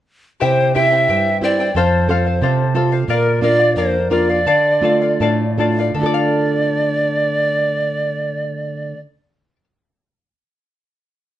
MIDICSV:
0, 0, Header, 1, 4, 480
1, 0, Start_track
1, 0, Key_signature, -1, "minor"
1, 0, Tempo, 669643
1, 295, Time_signature, 2, 2, 24, 8
1, 2695, Tempo, 719424
1, 3655, Tempo, 798935
1, 4135, Tempo, 837989
1, 7225, End_track
2, 0, Start_track
2, 0, Title_t, "Charango"
2, 0, Program_c, 0, 24
2, 289, Note_on_c, 0, 67, 66
2, 293, Note_on_c, 0, 76, 68
2, 295, Note_on_c, 0, 72, 73
2, 296, Note_on_c, 0, 64, 72
2, 299, Note_on_c, 0, 79, 71
2, 525, Note_off_c, 0, 76, 0
2, 529, Note_off_c, 0, 64, 0
2, 531, Note_off_c, 0, 67, 0
2, 533, Note_on_c, 0, 76, 46
2, 534, Note_off_c, 0, 72, 0
2, 536, Note_off_c, 0, 79, 0
2, 537, Note_on_c, 0, 64, 55
2, 542, Note_on_c, 0, 72, 62
2, 543, Note_on_c, 0, 79, 59
2, 646, Note_off_c, 0, 79, 0
2, 652, Note_off_c, 0, 72, 0
2, 654, Note_off_c, 0, 76, 0
2, 655, Note_off_c, 0, 64, 0
2, 655, Note_on_c, 0, 79, 42
2, 661, Note_on_c, 0, 72, 44
2, 667, Note_on_c, 0, 64, 36
2, 774, Note_off_c, 0, 64, 0
2, 774, Note_off_c, 0, 79, 0
2, 775, Note_on_c, 0, 76, 48
2, 777, Note_off_c, 0, 72, 0
2, 783, Note_on_c, 0, 64, 53
2, 785, Note_on_c, 0, 79, 64
2, 787, Note_on_c, 0, 72, 57
2, 1014, Note_off_c, 0, 76, 0
2, 1018, Note_off_c, 0, 64, 0
2, 1019, Note_off_c, 0, 79, 0
2, 1020, Note_off_c, 0, 72, 0
2, 1023, Note_on_c, 0, 76, 43
2, 1026, Note_on_c, 0, 64, 54
2, 1027, Note_on_c, 0, 72, 50
2, 1034, Note_on_c, 0, 79, 52
2, 1137, Note_off_c, 0, 79, 0
2, 1138, Note_off_c, 0, 76, 0
2, 1139, Note_off_c, 0, 64, 0
2, 1140, Note_off_c, 0, 72, 0
2, 1146, Note_on_c, 0, 79, 46
2, 1150, Note_on_c, 0, 72, 46
2, 1152, Note_on_c, 0, 64, 38
2, 1259, Note_off_c, 0, 72, 0
2, 1259, Note_off_c, 0, 79, 0
2, 1262, Note_off_c, 0, 64, 0
2, 1264, Note_on_c, 0, 69, 76
2, 1267, Note_on_c, 0, 72, 72
2, 1272, Note_on_c, 0, 77, 75
2, 1489, Note_off_c, 0, 69, 0
2, 1495, Note_off_c, 0, 72, 0
2, 1498, Note_on_c, 0, 69, 52
2, 1501, Note_off_c, 0, 77, 0
2, 1504, Note_on_c, 0, 72, 49
2, 1509, Note_on_c, 0, 77, 62
2, 1612, Note_off_c, 0, 77, 0
2, 1615, Note_off_c, 0, 69, 0
2, 1617, Note_off_c, 0, 72, 0
2, 1621, Note_on_c, 0, 77, 42
2, 1631, Note_on_c, 0, 72, 40
2, 1736, Note_off_c, 0, 72, 0
2, 1736, Note_off_c, 0, 77, 0
2, 1738, Note_on_c, 0, 69, 54
2, 1744, Note_on_c, 0, 72, 62
2, 1746, Note_on_c, 0, 77, 59
2, 1963, Note_off_c, 0, 69, 0
2, 1968, Note_off_c, 0, 72, 0
2, 1971, Note_on_c, 0, 69, 58
2, 1974, Note_off_c, 0, 77, 0
2, 1976, Note_on_c, 0, 72, 50
2, 1983, Note_on_c, 0, 77, 55
2, 2086, Note_off_c, 0, 77, 0
2, 2090, Note_off_c, 0, 72, 0
2, 2091, Note_off_c, 0, 69, 0
2, 2094, Note_on_c, 0, 77, 50
2, 2098, Note_on_c, 0, 72, 39
2, 2212, Note_off_c, 0, 77, 0
2, 2214, Note_off_c, 0, 72, 0
2, 2217, Note_on_c, 0, 70, 69
2, 2220, Note_on_c, 0, 74, 67
2, 2222, Note_on_c, 0, 77, 67
2, 2451, Note_off_c, 0, 70, 0
2, 2456, Note_off_c, 0, 74, 0
2, 2457, Note_off_c, 0, 77, 0
2, 2460, Note_on_c, 0, 70, 52
2, 2464, Note_on_c, 0, 74, 48
2, 2471, Note_on_c, 0, 77, 53
2, 2569, Note_off_c, 0, 77, 0
2, 2575, Note_off_c, 0, 74, 0
2, 2577, Note_off_c, 0, 70, 0
2, 2578, Note_on_c, 0, 77, 47
2, 2587, Note_on_c, 0, 74, 39
2, 2697, Note_off_c, 0, 77, 0
2, 2699, Note_off_c, 0, 74, 0
2, 2702, Note_on_c, 0, 70, 51
2, 2708, Note_on_c, 0, 74, 60
2, 2709, Note_on_c, 0, 77, 55
2, 2920, Note_off_c, 0, 70, 0
2, 2926, Note_off_c, 0, 74, 0
2, 2928, Note_on_c, 0, 70, 54
2, 2930, Note_off_c, 0, 77, 0
2, 2934, Note_on_c, 0, 74, 46
2, 2938, Note_on_c, 0, 77, 50
2, 3042, Note_off_c, 0, 77, 0
2, 3043, Note_off_c, 0, 70, 0
2, 3046, Note_off_c, 0, 74, 0
2, 3050, Note_on_c, 0, 77, 46
2, 3059, Note_on_c, 0, 74, 39
2, 3161, Note_off_c, 0, 74, 0
2, 3165, Note_off_c, 0, 77, 0
2, 3167, Note_on_c, 0, 69, 64
2, 3169, Note_on_c, 0, 74, 73
2, 3172, Note_on_c, 0, 77, 79
2, 3405, Note_off_c, 0, 69, 0
2, 3407, Note_off_c, 0, 74, 0
2, 3409, Note_off_c, 0, 77, 0
2, 3413, Note_on_c, 0, 69, 50
2, 3414, Note_on_c, 0, 74, 53
2, 3420, Note_on_c, 0, 77, 58
2, 3525, Note_off_c, 0, 77, 0
2, 3532, Note_off_c, 0, 69, 0
2, 3533, Note_off_c, 0, 74, 0
2, 3533, Note_on_c, 0, 77, 44
2, 3541, Note_on_c, 0, 74, 39
2, 3656, Note_off_c, 0, 77, 0
2, 3660, Note_off_c, 0, 74, 0
2, 3661, Note_on_c, 0, 69, 56
2, 3667, Note_on_c, 0, 74, 64
2, 3670, Note_on_c, 0, 77, 59
2, 3882, Note_off_c, 0, 69, 0
2, 3887, Note_off_c, 0, 74, 0
2, 3889, Note_on_c, 0, 69, 45
2, 3891, Note_off_c, 0, 77, 0
2, 3894, Note_on_c, 0, 74, 57
2, 3898, Note_on_c, 0, 77, 56
2, 4001, Note_off_c, 0, 77, 0
2, 4008, Note_on_c, 0, 77, 47
2, 4009, Note_off_c, 0, 74, 0
2, 4010, Note_off_c, 0, 69, 0
2, 4016, Note_on_c, 0, 74, 43
2, 4101, Note_off_c, 0, 74, 0
2, 4104, Note_on_c, 0, 69, 68
2, 4133, Note_off_c, 0, 77, 0
2, 4169, Note_on_c, 0, 74, 78
2, 4216, Note_on_c, 0, 77, 80
2, 6110, Note_off_c, 0, 69, 0
2, 6174, Note_off_c, 0, 74, 0
2, 6221, Note_off_c, 0, 77, 0
2, 7225, End_track
3, 0, Start_track
3, 0, Title_t, "Pan flute"
3, 0, Program_c, 1, 75
3, 308, Note_on_c, 1, 72, 78
3, 525, Note_off_c, 1, 72, 0
3, 538, Note_on_c, 1, 76, 104
3, 986, Note_off_c, 1, 76, 0
3, 1030, Note_on_c, 1, 74, 75
3, 1269, Note_on_c, 1, 72, 67
3, 1280, Note_off_c, 1, 74, 0
3, 1979, Note_off_c, 1, 72, 0
3, 2212, Note_on_c, 1, 70, 77
3, 2435, Note_off_c, 1, 70, 0
3, 2451, Note_on_c, 1, 74, 85
3, 2677, Note_off_c, 1, 74, 0
3, 2693, Note_on_c, 1, 72, 77
3, 2908, Note_off_c, 1, 72, 0
3, 2928, Note_on_c, 1, 74, 89
3, 3866, Note_off_c, 1, 74, 0
3, 4136, Note_on_c, 1, 74, 86
3, 5846, Note_off_c, 1, 74, 0
3, 7225, End_track
4, 0, Start_track
4, 0, Title_t, "Nylon-string guitar"
4, 0, Program_c, 2, 24
4, 300, Note_on_c, 2, 48, 48
4, 540, Note_on_c, 2, 60, 38
4, 543, Note_on_c, 2, 64, 37
4, 545, Note_on_c, 2, 67, 45
4, 762, Note_off_c, 2, 48, 0
4, 779, Note_on_c, 2, 43, 57
4, 921, Note_off_c, 2, 60, 0
4, 923, Note_off_c, 2, 64, 0
4, 923, Note_off_c, 2, 67, 0
4, 1012, Note_on_c, 2, 60, 39
4, 1014, Note_on_c, 2, 64, 39
4, 1017, Note_on_c, 2, 67, 46
4, 1204, Note_off_c, 2, 60, 0
4, 1206, Note_off_c, 2, 64, 0
4, 1206, Note_off_c, 2, 67, 0
4, 1241, Note_off_c, 2, 43, 0
4, 1254, Note_on_c, 2, 41, 57
4, 1495, Note_on_c, 2, 60, 40
4, 1498, Note_on_c, 2, 65, 38
4, 1499, Note_on_c, 2, 69, 49
4, 1718, Note_off_c, 2, 41, 0
4, 1732, Note_on_c, 2, 48, 55
4, 1877, Note_off_c, 2, 60, 0
4, 1878, Note_off_c, 2, 65, 0
4, 1879, Note_off_c, 2, 69, 0
4, 1968, Note_on_c, 2, 60, 41
4, 1971, Note_on_c, 2, 65, 36
4, 1975, Note_on_c, 2, 69, 47
4, 2160, Note_off_c, 2, 60, 0
4, 2163, Note_off_c, 2, 65, 0
4, 2164, Note_off_c, 2, 69, 0
4, 2196, Note_off_c, 2, 48, 0
4, 2209, Note_on_c, 2, 46, 51
4, 2446, Note_on_c, 2, 58, 40
4, 2448, Note_on_c, 2, 62, 34
4, 2453, Note_on_c, 2, 65, 48
4, 2679, Note_off_c, 2, 46, 0
4, 2694, Note_on_c, 2, 41, 52
4, 2830, Note_off_c, 2, 58, 0
4, 2832, Note_off_c, 2, 62, 0
4, 2833, Note_off_c, 2, 65, 0
4, 2923, Note_on_c, 2, 58, 41
4, 2926, Note_on_c, 2, 62, 37
4, 2931, Note_on_c, 2, 65, 44
4, 3112, Note_off_c, 2, 58, 0
4, 3114, Note_off_c, 2, 62, 0
4, 3115, Note_off_c, 2, 65, 0
4, 3146, Note_off_c, 2, 41, 0
4, 3163, Note_on_c, 2, 50, 59
4, 3398, Note_on_c, 2, 57, 43
4, 3402, Note_on_c, 2, 62, 36
4, 3405, Note_on_c, 2, 65, 44
4, 3640, Note_off_c, 2, 50, 0
4, 3657, Note_on_c, 2, 45, 56
4, 3794, Note_off_c, 2, 57, 0
4, 3795, Note_off_c, 2, 62, 0
4, 3797, Note_off_c, 2, 65, 0
4, 3882, Note_on_c, 2, 57, 41
4, 3887, Note_on_c, 2, 62, 34
4, 3887, Note_on_c, 2, 65, 43
4, 4081, Note_off_c, 2, 57, 0
4, 4083, Note_off_c, 2, 65, 0
4, 4084, Note_off_c, 2, 62, 0
4, 4100, Note_off_c, 2, 45, 0
4, 4103, Note_on_c, 2, 50, 48
4, 4117, Note_on_c, 2, 57, 40
4, 4132, Note_on_c, 2, 62, 42
4, 4144, Note_on_c, 2, 65, 38
4, 4155, Note_on_c, 2, 69, 55
4, 5814, Note_off_c, 2, 50, 0
4, 5828, Note_off_c, 2, 57, 0
4, 5842, Note_off_c, 2, 62, 0
4, 5854, Note_off_c, 2, 65, 0
4, 5865, Note_off_c, 2, 69, 0
4, 7225, End_track
0, 0, End_of_file